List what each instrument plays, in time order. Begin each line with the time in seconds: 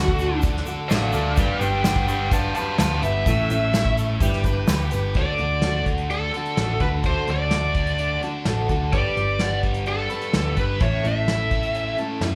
Already playing: picked electric bass D2, overdriven electric guitar D3 D4 A4, steel-string acoustic guitar A3 D4 F#4 A4, lead electric guitar F#4, tonewheel organ A4 F#5 D6
0.08 kick
0.19 overdriven electric guitar D3, closed hi-hat, shaker
0.42 overdriven electric guitar D4, kick, closed hi-hat, shaker
0.57 snare
0.66 steel-string acoustic guitar D4 F#4 A4, closed hi-hat, shaker
0.89 picked electric bass A1, steel-string acoustic guitar A3 D4 F#4 A4, lead electric guitar D5 F5, snare, closed hi-hat, shaker
1.13 picked electric bass D2, steel-string acoustic guitar D4 F#4 A4, lead electric guitar D5 F5, closed hi-hat, shaker
1.37 picked electric bass G1, steel-string acoustic guitar G3 D4 G4 B4, tonewheel organ B4 G5 D6, lead electric guitar D5 F5, kick, closed hi-hat, shaker
1.59 picked electric bass G1, steel-string acoustic guitar D4 G4 B4, lead electric guitar B4 G5, closed hi-hat, shaker
1.82 steel-string acoustic guitar G3 D4, overdriven electric guitar B3, lead electric guitar B4 G5, snare, closed hi-hat, shaker
1.87 steel-string acoustic guitar G4 B4
1.96 kick
2.06 overdriven electric guitar G3, lead electric guitar B4 G5, closed hi-hat, shaker
2.31 overdriven electric guitar D4, lead electric guitar F5 A5, kick, closed hi-hat, shaker
2.54 steel-string acoustic guitar G4 B4, lead electric guitar F5 A5, closed hi-hat, shaker
2.59 steel-string acoustic guitar D4
2.78 picked electric bass D2, steel-string acoustic guitar G3 D4 G4, overdriven electric guitar B3, lead electric guitar F5 A5, snare, closed hi-hat, shaker
2.83 steel-string acoustic guitar B4
3.02 picked electric bass G1, steel-string acoustic guitar D4 G4 B4, lead electric guitar E5, closed hi-hat, shaker
3.26 picked electric bass A1, steel-string acoustic guitar A2 E3 A3 C#4 E4 C#5, tonewheel organ A4 E5 C#6, kick, closed hi-hat, shaker
3.50 picked electric bass A1, steel-string acoustic guitar A3 C#4 E4 C#5, closed hi-hat, shaker
3.73 steel-string acoustic guitar A3 C#4 E4 C#5, snare, closed hi-hat, shaker
3.85 kick
3.97 overdriven electric guitar A3, closed hi-hat, shaker
4.20 picked electric bass G1, steel-string acoustic guitar G3 D4 G4 B4, tonewheel organ B4 G5 D6, kick, closed hi-hat, shaker
4.33 snare
4.44 steel-string acoustic guitar D4 G4 B4, kick, closed hi-hat, shaker
4.67 picked electric bass D2, steel-string acoustic guitar G3 D4 G4 B4, overdriven electric guitar B3, snare, closed hi-hat, shaker
4.91 picked electric bass G1, steel-string acoustic guitar D4 G4 B4, closed hi-hat, shaker
5.14 picked electric bass D2, steel-string acoustic guitar D3 A3 F#4, lead electric guitar D5, kick, closed hi-hat
5.19 steel-string acoustic guitar D4 A4
5.38 picked electric bass D2, steel-string acoustic guitar D4 F#4 A4, closed hi-hat
5.62 steel-string acoustic guitar A3 D4 F#4, snare, closed hi-hat
5.66 steel-string acoustic guitar A4
5.86 overdriven electric guitar D3, kick, closed hi-hat
5.98 closed hi-hat
6.10 overdriven electric guitar D4, lead electric guitar A4, closed hi-hat
6.34 steel-string acoustic guitar D4 F#4 A4, closed hi-hat
6.45 closed hi-hat
6.57 picked electric bass A1, steel-string acoustic guitar A3 D4 F#4 A4, snare, closed hi-hat
6.80 picked electric bass D2, steel-string acoustic guitar D4 F#4 A4, lead electric guitar B4, kick, closed hi-hat
7.03 picked electric bass D2, steel-string acoustic guitar D3 A3 D4 F#4 A4, lead electric guitar C5, kick, closed hi-hat
7.27 picked electric bass D2, steel-string acoustic guitar D4 F#4 A4, lead electric guitar D5, closed hi-hat
7.49 steel-string acoustic guitar A3 D4 F#4 A4, snare, closed hi-hat
7.75 overdriven electric guitar D3, kick, closed hi-hat
7.87 closed hi-hat
7.98 overdriven electric guitar D4, closed hi-hat
8.21 steel-string acoustic guitar D4 F#4 A4, closed hi-hat
8.44 picked electric bass A1, steel-string acoustic guitar A3 D4 F#4 A4, snare, closed hi-hat
8.69 picked electric bass D2, steel-string acoustic guitar D4 F#4 A4, kick, closed hi-hat
8.92 picked electric bass G1, steel-string acoustic guitar G3 D4 G4 B4, lead electric guitar D5, kick, closed hi-hat
9.16 picked electric bass G1, steel-string acoustic guitar D4 G4 B4, closed hi-hat
9.39 steel-string acoustic guitar G3 D4 G4 B4, overdriven electric guitar B3, snare, closed hi-hat
9.63 overdriven electric guitar G3, kick, closed hi-hat
9.74 closed hi-hat
9.86 overdriven electric guitar D4, lead electric guitar A4, closed hi-hat
10.10 steel-string acoustic guitar D4 G4 B4, closed hi-hat
10.21 closed hi-hat
10.33 picked electric bass D2, steel-string acoustic guitar G3 D4 G4 B4, overdriven electric guitar B3, snare, closed hi-hat
10.56 picked electric bass G1, steel-string acoustic guitar D4 G4 B4, lead electric guitar B4, kick, closed hi-hat
10.80 picked electric bass A1, steel-string acoustic guitar A2 E3 A3 C#4 E4 A4, lead electric guitar C#5, kick, closed hi-hat
11.04 picked electric bass A1, steel-string acoustic guitar A3 C#4 E4 A4, lead electric guitar E5, closed hi-hat
11.26 steel-string acoustic guitar A3 C#4 E4 A4, snare, closed hi-hat
11.51 overdriven electric guitar A3, kick, closed hi-hat
11.63 closed hi-hat
11.74 overdriven electric guitar C#4, closed hi-hat
11.98 steel-string acoustic guitar A3 C#4 E4 A4, closed hi-hat
12.21 picked electric bass F#2, steel-string acoustic guitar A3 C#4 E4 A4, snare, closed hi-hat